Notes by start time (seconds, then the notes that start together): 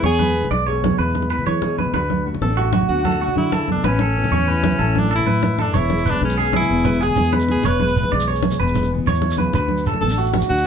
0.03 E2 B3 G#4 C#5, muted conga
0.12 low conga
0.19 G#3 B4, high conga
0.35 B3, muted nylon-string guitar stroke, low conga
0.44 muted conga, low conga
0.51 B1 G#3 D5, high conga
0.67 B2 G#4 C#5
0.84 muted conga, high conga, low conga
0.91 low conga
0.99 E2 B3 B4
1.15 G#3, high conga, low conga
1.22 muted conga
1.30 E3 B3 B4, low conga
1.39 low conga
1.47 E3 G#3 C#5, high conga
1.62 B2 G#4, muted conga, low conga
1.70 low conga
1.78 B4, high conga
1.86 low conga
1.93 D2 D3 A3 D4 F#4 B4, muted conga
2.02 low conga
2.10 D4, high conga
2.26 A3 F#4, low conga
2.34 muted conga, low conga
2.41 A1 B3 A4, high conga
2.49 D4
2.57 A2 F#4
2.73 F#4, muted conga, high conga, low conga
2.81 low conga
2.89 D2 D3 B3 F#4
2.98 D4
3.05 D4 A4, high conga, low conga
3.12 muted conga
3.21 A3 D4 F#4
3.28 low conga
3.36 D3 E4, high conga
3.52 C#3 A4, muted conga, low conga
3.61 low conga
3.68 B2 D4, high conga
3.76 low conga
3.84 A1 A2 B3 C#4 B4, muted conga, low conga
3.94 C#4
3.99 A3 A4, high conga
4.16 E3 B3, low conga
4.24 C#4, muted conga, low conga
4.31 E2 A3 C#5, high conga
4.48 E2 E4 B4
4.64 muted conga, high conga
4.72 low conga
4.79 A1 A2 C#4 A4
4.95 A3 D4, high conga
5.03 muted conga
5.11 E3 C#4 A4
5.15 E4, low conga
5.27 A2 B4, high conga
5.43 G#2, muted conga, low conga
5.58 F#2 D4 A4, high conga
5.74 E1 E2 B3 E4 C#5, muted conga, shekere
5.82 low conga
5.90 G#3, high conga
5.97 shekere
6.06 E3 B3 B4, low conga, shekere
6.10 D4, muted conga, low conga
6.21 B1 G#3 C#4, high conga
6.30 shekere
6.37 B2 G#4
6.46 shekere
6.53 E4 G#4, muted conga, high conga
6.61 low conga, shekere
6.70 E1 E2 B3
6.78 shekere
6.85 G#3 B4, high conga, low conga, shekere
6.93 muted conga, shekere
7.00 E3 B3 G#4, low conga
7.08 low conga
7.16 E2 G#3, high conga, shekere
7.24 shekere
7.33 B2 G#4 B4, muted conga, low conga
7.40 low conga, shekere
7.48 G#4, high conga
7.56 low conga
7.63 E1 E2 B3 B4 C#5, muted conga, shekere
7.72 low conga
7.79 G#3 B4, high conga
7.88 shekere
7.96 E3 B3, low conga, shekere
8.03 muted conga, low conga
8.12 B1 G#3 D5, high conga
8.20 shekere
8.28 G#4 C#5, muted nylon-string guitar stroke
8.36 shekere
8.42 muted conga, high conga, low conga
8.51 low conga, shekere
8.60 E1 E2 B3 B4
8.67 shekere
8.75 G#3, high conga, low conga, shekere
8.83 muted conga, shekere
8.91 E3 B3, low conga
8.98 low conga
9.07 E2 A2 C#5, high conga, shekere
9.15 shekere
9.22 B2, muted conga, low conga
9.30 low conga, shekere
9.38 C#3 B4, high conga
9.45 low conga
9.53 D2 D3 F#4 B4, muted conga, shekere
9.61 low conga
9.68 D4, high conga
9.77 shekere
9.85 A3 F#4 A4, low conga, shekere
9.94 muted conga, low conga
10.01 A1 B3 A4, high conga
10.10 D4, shekere
10.18 A2 F#4
10.26 shekere
10.33 F#4, muted conga, high conga, low conga
10.42 low conga, shekere
10.49 D2 D4 F#4, muted nylon-string guitar stroke
10.58 shekere